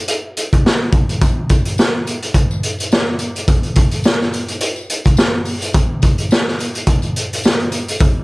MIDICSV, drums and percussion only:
0, 0, Header, 1, 2, 480
1, 0, Start_track
1, 0, Tempo, 565984
1, 1031, Time_signature, 4, 2, 24, 8
1, 6987, End_track
2, 0, Start_track
2, 0, Title_t, "Drums"
2, 65, Note_on_c, 9, 42, 84
2, 150, Note_off_c, 9, 42, 0
2, 311, Note_on_c, 9, 42, 59
2, 396, Note_off_c, 9, 42, 0
2, 448, Note_on_c, 9, 36, 79
2, 451, Note_on_c, 9, 42, 52
2, 533, Note_off_c, 9, 36, 0
2, 535, Note_off_c, 9, 42, 0
2, 562, Note_on_c, 9, 38, 107
2, 647, Note_off_c, 9, 38, 0
2, 782, Note_on_c, 9, 42, 69
2, 785, Note_on_c, 9, 36, 91
2, 867, Note_off_c, 9, 42, 0
2, 870, Note_off_c, 9, 36, 0
2, 925, Note_on_c, 9, 42, 50
2, 1010, Note_off_c, 9, 42, 0
2, 1027, Note_on_c, 9, 42, 82
2, 1031, Note_on_c, 9, 36, 117
2, 1034, Note_on_c, 9, 54, 48
2, 1112, Note_off_c, 9, 42, 0
2, 1116, Note_off_c, 9, 36, 0
2, 1119, Note_off_c, 9, 54, 0
2, 1265, Note_on_c, 9, 42, 75
2, 1273, Note_on_c, 9, 36, 85
2, 1273, Note_on_c, 9, 54, 46
2, 1350, Note_off_c, 9, 42, 0
2, 1358, Note_off_c, 9, 36, 0
2, 1358, Note_off_c, 9, 54, 0
2, 1400, Note_on_c, 9, 42, 55
2, 1485, Note_off_c, 9, 42, 0
2, 1509, Note_on_c, 9, 54, 74
2, 1520, Note_on_c, 9, 38, 113
2, 1594, Note_off_c, 9, 54, 0
2, 1605, Note_off_c, 9, 38, 0
2, 1753, Note_on_c, 9, 54, 42
2, 1756, Note_on_c, 9, 42, 65
2, 1837, Note_off_c, 9, 54, 0
2, 1841, Note_off_c, 9, 42, 0
2, 1885, Note_on_c, 9, 42, 51
2, 1970, Note_off_c, 9, 42, 0
2, 1985, Note_on_c, 9, 42, 88
2, 1988, Note_on_c, 9, 36, 85
2, 1993, Note_on_c, 9, 54, 46
2, 2070, Note_off_c, 9, 42, 0
2, 2073, Note_off_c, 9, 36, 0
2, 2078, Note_off_c, 9, 54, 0
2, 2128, Note_on_c, 9, 54, 52
2, 2212, Note_off_c, 9, 54, 0
2, 2231, Note_on_c, 9, 42, 61
2, 2316, Note_off_c, 9, 42, 0
2, 2363, Note_on_c, 9, 54, 29
2, 2373, Note_on_c, 9, 42, 44
2, 2448, Note_off_c, 9, 54, 0
2, 2458, Note_off_c, 9, 42, 0
2, 2474, Note_on_c, 9, 54, 77
2, 2482, Note_on_c, 9, 38, 108
2, 2559, Note_off_c, 9, 54, 0
2, 2567, Note_off_c, 9, 38, 0
2, 2702, Note_on_c, 9, 42, 66
2, 2712, Note_on_c, 9, 54, 46
2, 2787, Note_off_c, 9, 42, 0
2, 2797, Note_off_c, 9, 54, 0
2, 2844, Note_on_c, 9, 54, 29
2, 2848, Note_on_c, 9, 42, 50
2, 2929, Note_off_c, 9, 54, 0
2, 2933, Note_off_c, 9, 42, 0
2, 2949, Note_on_c, 9, 42, 85
2, 2950, Note_on_c, 9, 54, 50
2, 2951, Note_on_c, 9, 36, 119
2, 3033, Note_off_c, 9, 42, 0
2, 3035, Note_off_c, 9, 54, 0
2, 3036, Note_off_c, 9, 36, 0
2, 3078, Note_on_c, 9, 42, 38
2, 3163, Note_off_c, 9, 42, 0
2, 3184, Note_on_c, 9, 42, 80
2, 3191, Note_on_c, 9, 54, 49
2, 3193, Note_on_c, 9, 36, 90
2, 3269, Note_off_c, 9, 42, 0
2, 3276, Note_off_c, 9, 54, 0
2, 3278, Note_off_c, 9, 36, 0
2, 3318, Note_on_c, 9, 42, 57
2, 3328, Note_on_c, 9, 54, 29
2, 3403, Note_off_c, 9, 42, 0
2, 3413, Note_off_c, 9, 54, 0
2, 3426, Note_on_c, 9, 54, 75
2, 3439, Note_on_c, 9, 38, 106
2, 3511, Note_off_c, 9, 54, 0
2, 3524, Note_off_c, 9, 38, 0
2, 3571, Note_on_c, 9, 38, 31
2, 3656, Note_off_c, 9, 38, 0
2, 3671, Note_on_c, 9, 54, 40
2, 3676, Note_on_c, 9, 42, 62
2, 3756, Note_off_c, 9, 54, 0
2, 3761, Note_off_c, 9, 42, 0
2, 3801, Note_on_c, 9, 42, 48
2, 3802, Note_on_c, 9, 54, 25
2, 3886, Note_off_c, 9, 42, 0
2, 3887, Note_off_c, 9, 54, 0
2, 3905, Note_on_c, 9, 42, 89
2, 3910, Note_on_c, 9, 54, 49
2, 3990, Note_off_c, 9, 42, 0
2, 3995, Note_off_c, 9, 54, 0
2, 4037, Note_on_c, 9, 54, 50
2, 4122, Note_off_c, 9, 54, 0
2, 4151, Note_on_c, 9, 42, 65
2, 4236, Note_off_c, 9, 42, 0
2, 4278, Note_on_c, 9, 54, 30
2, 4289, Note_on_c, 9, 36, 71
2, 4293, Note_on_c, 9, 42, 51
2, 4363, Note_off_c, 9, 54, 0
2, 4374, Note_off_c, 9, 36, 0
2, 4378, Note_off_c, 9, 42, 0
2, 4385, Note_on_c, 9, 54, 77
2, 4398, Note_on_c, 9, 38, 110
2, 4469, Note_off_c, 9, 54, 0
2, 4482, Note_off_c, 9, 38, 0
2, 4623, Note_on_c, 9, 46, 48
2, 4627, Note_on_c, 9, 54, 44
2, 4707, Note_off_c, 9, 46, 0
2, 4711, Note_off_c, 9, 54, 0
2, 4757, Note_on_c, 9, 54, 32
2, 4762, Note_on_c, 9, 42, 49
2, 4842, Note_off_c, 9, 54, 0
2, 4847, Note_off_c, 9, 42, 0
2, 4864, Note_on_c, 9, 54, 50
2, 4869, Note_on_c, 9, 42, 85
2, 4872, Note_on_c, 9, 36, 120
2, 4949, Note_off_c, 9, 54, 0
2, 4954, Note_off_c, 9, 42, 0
2, 4957, Note_off_c, 9, 36, 0
2, 5105, Note_on_c, 9, 54, 47
2, 5108, Note_on_c, 9, 42, 78
2, 5114, Note_on_c, 9, 36, 84
2, 5189, Note_off_c, 9, 54, 0
2, 5192, Note_off_c, 9, 42, 0
2, 5199, Note_off_c, 9, 36, 0
2, 5240, Note_on_c, 9, 42, 55
2, 5325, Note_off_c, 9, 42, 0
2, 5350, Note_on_c, 9, 54, 72
2, 5361, Note_on_c, 9, 38, 118
2, 5434, Note_off_c, 9, 54, 0
2, 5446, Note_off_c, 9, 38, 0
2, 5492, Note_on_c, 9, 38, 33
2, 5577, Note_off_c, 9, 38, 0
2, 5588, Note_on_c, 9, 54, 43
2, 5599, Note_on_c, 9, 42, 63
2, 5673, Note_off_c, 9, 54, 0
2, 5683, Note_off_c, 9, 42, 0
2, 5715, Note_on_c, 9, 54, 26
2, 5723, Note_on_c, 9, 42, 46
2, 5800, Note_off_c, 9, 54, 0
2, 5808, Note_off_c, 9, 42, 0
2, 5824, Note_on_c, 9, 42, 91
2, 5824, Note_on_c, 9, 54, 45
2, 5827, Note_on_c, 9, 36, 89
2, 5908, Note_off_c, 9, 54, 0
2, 5909, Note_off_c, 9, 42, 0
2, 5912, Note_off_c, 9, 36, 0
2, 5954, Note_on_c, 9, 54, 50
2, 5959, Note_on_c, 9, 42, 33
2, 6039, Note_off_c, 9, 54, 0
2, 6044, Note_off_c, 9, 42, 0
2, 6072, Note_on_c, 9, 42, 66
2, 6157, Note_off_c, 9, 42, 0
2, 6214, Note_on_c, 9, 42, 53
2, 6299, Note_off_c, 9, 42, 0
2, 6307, Note_on_c, 9, 54, 81
2, 6323, Note_on_c, 9, 38, 106
2, 6392, Note_off_c, 9, 54, 0
2, 6407, Note_off_c, 9, 38, 0
2, 6443, Note_on_c, 9, 42, 31
2, 6528, Note_off_c, 9, 42, 0
2, 6545, Note_on_c, 9, 42, 67
2, 6546, Note_on_c, 9, 54, 48
2, 6630, Note_off_c, 9, 42, 0
2, 6631, Note_off_c, 9, 54, 0
2, 6684, Note_on_c, 9, 42, 50
2, 6769, Note_off_c, 9, 42, 0
2, 6781, Note_on_c, 9, 54, 53
2, 6787, Note_on_c, 9, 42, 81
2, 6789, Note_on_c, 9, 36, 121
2, 6866, Note_off_c, 9, 54, 0
2, 6872, Note_off_c, 9, 42, 0
2, 6874, Note_off_c, 9, 36, 0
2, 6987, End_track
0, 0, End_of_file